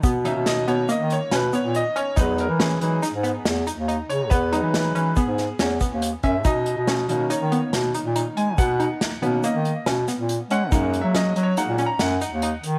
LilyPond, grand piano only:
<<
  \new Staff \with { instrumentName = "Grand piano" } { \time 5/4 \key b \major \tempo 4 = 140 r8 e''8 dis''8 cis''8 dis''8 cis''8 b'8 cis''8 dis''8 cis''8 | b'8 ais'8 gis'2~ gis'8 r4 cis''8 | b'2 gis'4 r4. e''8 | dis''2 cis''4 r4. gis''8 |
fis''2 dis''4 r4. fis''8~ | \tuplet 3/2 { fis''4 e''8 dis''4 cis''8 fis''4 ais''8 } fis''4. r8 | }
  \new Staff \with { instrumentName = "Grand piano" } { \clef bass \time 5/4 \key b \major r8 <dis ais cis'>1~ <dis ais cis'>8 | <fis gis dis'>8 r4 <fis gis dis'>8 r2. | r8 <fis gis dis'>4. r2. | r4. <dis ais cis'>2.~ <dis ais cis'>8~ |
<dis ais cis'>4. <dis ais cis'>8 r2. | <fis gis ais>4. r8 <fis gis ais>8 r2 r8 | }
>>